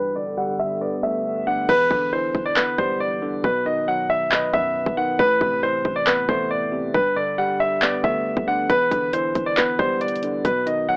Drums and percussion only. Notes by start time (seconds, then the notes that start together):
1.69 kick, crash
1.91 kick
2.35 kick
2.56 clap
2.78 kick
3.44 kick
4.32 clap
4.54 kick
4.86 kick
5.19 kick
5.41 kick
5.85 kick
6.07 clap
6.29 kick
6.94 kick
7.82 clap
8.04 kick
8.37 kick
8.70 kick, closed hi-hat
8.91 kick, closed hi-hat
9.13 closed hi-hat
9.35 kick, closed hi-hat
9.57 clap, closed hi-hat
9.79 kick
10.01 closed hi-hat
10.08 closed hi-hat
10.16 closed hi-hat
10.23 closed hi-hat
10.45 kick, closed hi-hat
10.67 closed hi-hat